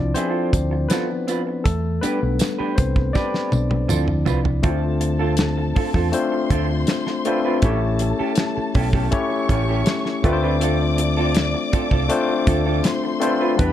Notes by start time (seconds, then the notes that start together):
Already playing: C2 F3 C4 D4 E4 F4 D5
0.14 B3 C4 E4 G#4 C5, closed hi-hat, tambourine
0.29 C4 F4 A4
0.53 D2, muted clean electric guitar stroke, kick, closed hi-hat, tambourine
0.71 muted clean electric guitar stroke
0.89 B3 C4 F4 A4 B4, snare, closed hi-hat, tambourine
1.09 muted clean electric guitar stroke
1.28 C4 F4 B4, closed hi-hat, tambourine
1.47 muted clean electric guitar stroke
1.64 E2 A3 A4, kick, closed hi-hat, tambourine
2.01 G3 B3 D4 G4 B4, muted fingered electric bass stroke, closed hi-hat, tambourine
2.23 B1
2.39 muted clean electric guitar stroke, snare, closed hi-hat, tambourine
2.59 D4 G4 B4, muted fingered electric bass stroke
2.76 C2 C4 C5, muted clean electric guitar stroke, kick, closed hi-hat, tambourine
2.96 muted clean electric guitar stroke, kick
3.13 D4 G4 B4 D5, kick, snare, tambourine
3.34 snare
3.51 B1, muted clean electric guitar stroke, high tom, tambourine
3.70 muted clean electric guitar stroke, high tom
3.89 D2 F3 C4 E4 F4 A4, mid tom, tambourine
4.08 muted clean electric guitar stroke, mid tom
4.25 C2 C4 F4 B4, floor tom, tambourine
4.44 muted clean electric guitar stroke, floor tom
4.63 D2 A3 C4 D4 E4 F4 A4 C5 A5, kick, closed hi-hat
4.71 F4
5.00 muted clean electric guitar stroke, closed hi-hat
5.19 C4 F4 A4
5.37 muted clean electric guitar stroke, snare, closed hi-hat
5.57 muted clean electric guitar stroke
5.76 C4 F4 A4, muted fingered electric bass stroke, kick, open hi-hat
5.94 E2 C4 F4 A4, kick
6.12 A3 C4 D4 F4 C5 C6, muted clean electric guitar stroke, closed hi-hat
6.32 muted clean electric guitar stroke
6.50 D2 C4 F4 A4, kick, closed hi-hat
6.70 muted clean electric guitar stroke
6.87 muted clean electric guitar stroke, snare, closed hi-hat
7.07 muted clean electric guitar stroke, snare
7.25 A3 C4 D4 F4 B4 C5, closed hi-hat
7.45 C4 F4 B4
7.62 A1 A3 C#4 E4 G4 A4 C#5 A5, kick, closed hi-hat
7.99 muted clean electric guitar stroke, closed hi-hat
8.19 C#4 G4 A4, muted fingered electric bass stroke
8.36 muted clean electric guitar stroke, snare, closed hi-hat
8.57 muted clean electric guitar stroke, muted fingered electric bass stroke
8.75 B1 C#4 G4 A4, kick, open hi-hat
8.93 C#4 G4 A4, kick
9.11 A3 C#4 E4 G4 C#5 C#6, muted clean electric guitar stroke, kick, closed hi-hat
9.31 muted clean electric guitar stroke
9.49 A1 C#4 G4 A4, kick, closed hi-hat
9.68 C#4 G4 A4
9.86 muted clean electric guitar stroke, snare, closed hi-hat
10.05 muted clean electric guitar stroke, snare
10.23 D2 A3 C4 D4 F4 B4 D5 D6, kick, closed hi-hat
10.33 C5
10.43 C4 F4 B4
10.61 C4 F4 A4, closed hi-hat
10.98 muted clean electric guitar stroke, closed hi-hat
11.17 C4 F4 A4
11.35 muted clean electric guitar stroke, snare, closed hi-hat
11.54 muted clean electric guitar stroke
11.73 C4 F4 A4, muted fingered electric bass stroke, kick, closed hi-hat
11.91 C2 C4 F4 A4, kick
12.09 A3 C4 D4 F4 C5, muted clean electric guitar stroke, closed hi-hat
12.28 muted clean electric guitar stroke
12.47 D2 C4 F4 A4, kick, closed hi-hat
12.66 C4 F4 A4
12.83 C5 C6, muted clean electric guitar stroke, snare, closed hi-hat
13.04 muted clean electric guitar stroke
13.20 A3 C4 D4 F4 B4 C5, closed hi-hat
13.41 C4 F4 B4
13.57 E2 G3 B3 D4 E4 G4 B4 B5, kick, closed hi-hat
13.61 B4